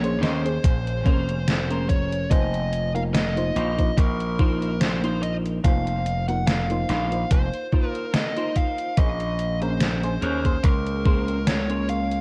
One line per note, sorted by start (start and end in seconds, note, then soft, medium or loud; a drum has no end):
0.00 0.17 A#1 medium
0.00 0.39 A#3 loud
0.00 0.40 C#4 medium
0.00 0.40 G#4 medium
0.00 0.21 C#5 loud
0.00 muted clean electric guitar stroke medium
0.04 0.40 C5 loud
0.04 closed hi-hat soft
0.22 0.57 D#2 medium
0.22 0.45 C#4 loud
0.22 0.45 G#4 loud
0.22 0.45 A#4 loud
0.22 1.89 C5 loud
0.22 0.45 D#5 loud
0.22 snare medium
0.22 closed hi-hat medium
0.44 1.01 A#3 medium
0.44 1.01 C#4 medium
0.44 1.01 G#4 medium
0.44 1.01 C5 medium
0.44 closed hi-hat soft
0.64 1.06 A#1 medium
0.64 kick loud
0.64 closed hi-hat medium
0.87 closed hi-hat soft
1.05 2.25 F1 medium
1.05 1.45 A#3 medium
1.05 1.38 C#4 loud
1.05 1.45 C#4 medium
1.05 1.45 G#4 medium
1.05 1.38 G#4 medium
1.05 1.38 A#4 loud
1.05 1.45 C5 loud
1.05 1.38 C5 medium
1.05 kick loud
1.05 closed hi-hat soft
1.29 closed hi-hat soft
1.48 snare loud
1.48 closed hi-hat medium
1.69 2.26 A#3 medium
1.69 2.26 C#4 medium
1.69 2.31 C#4 medium
1.69 2.26 G#4 medium
1.69 2.31 G#4 medium
1.69 2.27 A#4 medium
1.69 2.31 A#4 medium
1.69 2.31 C5 medium
1.69 closed hi-hat soft
1.89 2.30 C#5 loud
1.89 kick medium
1.89 closed hi-hat medium
2.12 closed hi-hat soft
2.30 3.50 F1 loud
2.30 2.89 A#3 medium
2.30 2.90 D#4 medium
2.30 2.90 F4 medium
2.30 2.90 C5 loud
2.30 2.91 D#5 loud
2.30 kick loud
2.30 closed hi-hat medium
2.54 closed hi-hat soft
2.73 closed hi-hat medium
2.94 3.18 A#3 loud
2.94 3.18 D#4 medium
2.94 3.18 F4 medium
2.94 3.18 A#4 loud
2.94 3.00 F5 medium
2.94 closed hi-hat soft
3.14 4.00 D#5 loud
3.14 snare loud
3.14 closed hi-hat medium
3.36 3.73 A#3 loud
3.36 3.73 D#4 medium
3.36 3.73 F4 medium
3.36 3.73 C5 loud
3.36 muted clean electric guitar stroke medium
3.36 closed hi-hat soft
3.56 3.90 A#1 medium
3.56 3.78 D#4 loud
3.56 3.79 F4 loud
3.56 3.79 A#4 medium
3.56 3.79 C5 loud
3.56 closed hi-hat medium
3.78 4.34 A#3 medium
3.78 4.34 D#4 medium
3.78 4.35 F4 medium
3.78 4.35 C5 medium
3.78 kick medium
3.78 closed hi-hat soft
3.97 5.59 A#1 medium
3.97 4.83 A#4 loud
3.97 kick loud
3.97 closed hi-hat medium
4.20 closed hi-hat soft
4.39 4.78 A#3 medium
4.39 4.71 D#4 loud
4.39 4.79 D#4 medium
4.39 4.79 F4 medium
4.39 4.71 F4 medium
4.39 4.71 A#4 loud
4.39 4.72 C5 loud
4.39 4.79 C5 loud
4.39 kick loud
4.62 closed hi-hat soft
4.81 5.20 C5 loud
4.81 snare loud
4.81 closed hi-hat medium
5.03 5.59 A#3 medium
5.03 5.87 D#4 medium
5.03 5.60 D#4 medium
5.03 5.60 F4 medium
5.03 5.87 F4 medium
5.03 5.87 A#4 medium
5.03 5.60 C5 medium
5.03 5.87 C5 loud
5.03 closed hi-hat soft
5.23 5.34 D#5 loud
5.23 closed hi-hat medium
5.46 closed hi-hat soft
5.64 6.83 F1 medium
5.64 6.23 A#3 medium
5.64 6.23 D#4 medium
5.64 6.23 F4 medium
5.64 6.23 C5 loud
5.64 6.25 F5 loud
5.64 kick loud
5.64 closed hi-hat medium
5.87 closed hi-hat soft
6.06 closed hi-hat medium
6.28 6.51 A#3 loud
6.28 6.51 D#4 medium
6.28 6.52 F4 medium
6.28 6.52 A#4 loud
6.28 6.46 F#5 loud
6.28 closed hi-hat soft
6.47 7.33 F5 loud
6.47 snare loud
6.47 closed hi-hat medium
6.70 7.06 A#3 loud
6.70 7.06 D#4 medium
6.70 7.07 F4 medium
6.70 7.07 C5 loud
6.70 muted clean electric guitar stroke medium
6.70 closed hi-hat soft
6.89 7.24 A#1 loud
6.89 7.12 D#4 loud
6.89 7.12 F4 loud
6.89 7.12 A#4 medium
6.89 7.12 C5 loud
6.89 snare medium
6.89 closed hi-hat medium
7.11 7.68 A#3 medium
7.11 7.68 D#4 medium
7.11 7.68 F4 medium
7.11 7.68 C5 loud
7.11 closed hi-hat soft
7.31 7.49 F1 medium
7.31 7.88 C5 loud
7.31 muted clean electric guitar stroke soft
7.31 kick loud
7.31 closed hi-hat medium
7.53 closed hi-hat soft
7.72 8.12 A#3 medium
7.72 8.04 D#4 loud
7.72 8.12 D#4 medium
7.72 8.05 F4 medium
7.72 8.12 F4 medium
7.72 8.05 A#4 loud
7.72 8.05 C5 loud
7.72 8.12 C5 loud
7.72 kick loud
7.72 closed hi-hat soft
7.88 8.10 A#4 loud
7.95 closed hi-hat soft
8.14 8.57 D#5 loud
8.14 snare loud
8.14 closed hi-hat medium
8.36 8.93 A#3 medium
8.36 8.97 D#4 medium
8.36 8.93 D#4 medium
8.36 8.97 F4 medium
8.36 8.93 F4 medium
8.36 8.97 A#4 medium
8.36 8.98 C5 loud
8.36 8.93 C5 medium
8.36 closed hi-hat soft
8.56 8.99 F5 loud
8.56 kick medium
8.56 closed hi-hat medium
8.78 closed hi-hat soft
8.97 10.17 A#1 loud
8.97 9.56 A#3 medium
8.97 9.56 C#4 medium
8.97 9.56 G#4 medium
8.97 9.57 C5 loud
8.97 9.58 D#5 loud
8.97 kick loud
8.97 closed hi-hat medium
9.20 closed hi-hat soft
9.39 closed hi-hat medium
9.61 9.85 A#3 loud
9.61 9.85 C#4 medium
9.61 9.85 G#4 medium
9.61 9.85 A#4 loud
9.61 10.67 C5 loud
9.61 closed hi-hat soft
9.80 snare loud
9.80 closed hi-hat medium
10.03 10.39 A#3 loud
10.03 10.39 C#4 medium
10.03 10.40 G#4 medium
10.03 10.40 C5 loud
10.03 muted clean electric guitar stroke medium
10.03 closed hi-hat soft
10.21 10.57 D#2 loud
10.21 10.45 C#4 loud
10.21 10.45 G#4 medium
10.21 10.45 A#4 loud
10.21 10.45 C#5 loud
10.21 closed hi-hat medium
10.44 11.01 A#3 medium
10.44 11.01 C#4 medium
10.44 11.01 G#4 medium
10.44 11.01 C6 loud
10.44 kick medium
10.44 closed hi-hat soft
10.63 12.21 C#2 medium
10.63 11.50 A#4 loud
10.63 muted clean electric guitar stroke soft
10.63 kick loud
10.63 closed hi-hat medium
10.87 closed hi-hat soft
11.05 11.45 A#3 medium
11.05 11.38 C#4 loud
11.05 11.45 C#4 medium
11.05 11.38 G#4 medium
11.05 11.45 G#4 medium
11.05 11.38 A#4 loud
11.05 11.38 C5 loud
11.05 11.46 C6 loud
11.05 kick loud
11.28 closed hi-hat soft
11.47 11.86 C#5 loud
11.47 snare loud
11.47 closed hi-hat medium
11.69 12.21 A#3 medium
11.69 12.21 C#4 medium
11.69 12.21 G#4 medium
11.69 12.21 A#4 medium
11.69 12.21 C#5 loud
11.69 12.21 C6 medium
11.69 closed hi-hat soft
11.89 12.21 F5 loud
11.89 closed hi-hat medium
12.12 closed hi-hat soft